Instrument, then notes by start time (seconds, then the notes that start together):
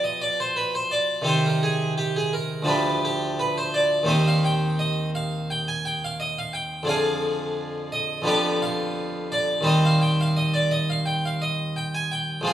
harpsichord
Already playing: B2 F3 D4 G4
0.04 D#5
0.22 D5
0.40 C5
0.56 B4
0.75 C5
0.91 D5
1.22 C3 D#3 D#4 G4
1.28 C5
1.46 A#4
1.63 G#4
1.98 G4
2.16 G#4
2.33 A#4
2.62 D2 F3 D4 G4
2.68 B4
3.05 G4
3.39 B4
3.58 C5
3.74 D5
4.03 D#2 D#3 C4 G4
4.09 D#5
4.27 F5
4.45 G5
4.79 D#5
5.15 F5
5.50 G5
5.68 G#5
5.85 G5
6.04 F5
6.20 D#5
6.38 F5
6.53 G5
6.83 F2 D3 D4 G#4
6.89 F5
7.92 D#5
8.22 F2 D3 B3 G4
8.28 D5
8.62 F5
9.32 D5
9.61 D#2 G3 C4 G4
9.67 D#5
9.85 F5
10.02 G5
10.21 F5
10.37 D#5
10.54 D5
10.71 D#5
10.90 F5
11.06 G5
11.25 F5
11.42 D#5
11.76 G5
11.95 G#5
12.12 G5
12.41 F2 G#3 C4 F4
12.48 F5